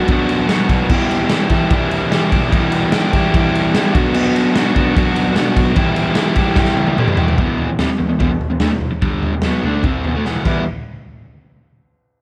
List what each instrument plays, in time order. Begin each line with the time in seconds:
Already playing: overdriven electric guitar F#4
0.08 overdriven electric guitar F#3 B3 D4, kick, ride
0.12 overdriven electric guitar F#4
0.29 ride
0.48 overdriven electric guitar B2 F#3 B3 D4 F#4, snare, ride
0.69 overdriven electric guitar B3 D4 F#4, kick, ride
0.89 overdriven electric guitar E2 B2 E3 G3 E4 G4, kick, crash
1.11 ride
1.29 overdriven electric guitar E3 G3 E4 G4, snare, ride
1.50 overdriven electric guitar G3 E4 G4, kick, ride
1.54 overdriven electric guitar E3
1.70 overdriven electric guitar E3 G3 E4 G4, kick, ride
1.91 ride
2.12 overdriven electric guitar E2 B2 E3 G3 E4 G4, snare, ride
2.31 overdriven electric guitar E3 G3 E4 G4, kick, ride
2.52 overdriven electric guitar E2 B2 E3 G3 E4 G4, kick, ride
2.72 ride
2.92 overdriven electric guitar E3 G3 E4 G4, snare, ride
3.13 overdriven electric guitar E3 G3 E4 G4, kick, ride
3.34 overdriven electric guitar E3 G3 E4 G4, kick, ride
3.55 ride
3.73 overdriven electric guitar E2 B2 E3 G3 E4, snare, ride
3.77 overdriven electric guitar G4
3.94 overdriven electric guitar F#3 B3 D4 F#4, kick, ride
3.98 overdriven electric guitar B2
4.14 overdriven electric guitar B2 F#3 B3 D4 F#4, crash
4.36 ride
4.55 overdriven electric guitar F#3 B3 D4 F#4, snare, ride
4.75 overdriven electric guitar B3 D4 F#4, kick, ride
4.95 overdriven electric guitar F#3 B3 D4 F#4, kick, ride
5.16 ride
5.34 overdriven electric guitar B2 F#3 B3 D4 F#4, snare, ride
5.56 overdriven electric guitar B3 D4 F#4, kick, ride
5.74 overdriven electric guitar E2 B2 E3 G3 E4, kick, ride
5.78 overdriven electric guitar G4
5.96 ride
6.15 overdriven electric guitar E3 G3 E4 G4, snare, ride
6.36 overdriven electric guitar E3 G3 E4 G4, kick, ride
6.55 overdriven electric guitar E3 G3 E4 G4, kick, snare
6.65 snare
6.77 high tom
6.87 high tom
6.97 overdriven electric guitar E2 B2 E3 G3 E4 G4, mid tom
7.08 mid tom
7.17 overdriven electric guitar E3 G3 E4 G4, floor tom
7.28 floor tom
7.38 overdriven electric guitar E2 B2 E3, kick, floor tom
7.58 floor tom
7.70 overdriven electric guitar E2 B2
7.79 overdriven electric guitar C3 G3, snare, floor tom
7.89 muted overdriven electric guitar stroke
7.98 overdriven electric guitar E2 B2, floor tom
8.09 overdriven electric guitar E2 B2
8.19 overdriven electric guitar E2 B2, kick, floor tom
8.31 overdriven electric guitar E2 B2
8.41 floor tom
8.50 overdriven electric guitar E2 B2
8.60 overdriven electric guitar D3 A3, snare, floor tom
8.70 overdriven electric guitar E2 B2
8.81 floor tom
8.92 muted overdriven electric guitar stroke
9.02 overdriven electric guitar G2 D3 G3, kick, floor tom
9.23 floor tom
9.34 overdriven electric guitar E2 B2
9.42 overdriven electric guitar B2 F#3 B3, snare, floor tom
9.63 overdriven electric guitar D3 A3 D4, floor tom
9.83 overdriven electric guitar C3 G3 C4, kick, floor tom
10.04 overdriven electric guitar E2 B2, floor tom
10.15 overdriven electric guitar D3 A3
10.25 overdriven electric guitar E2 B2 E3, snare
10.36 high tom
10.45 overdriven electric guitar E3 G3 B3 E4, kick, crash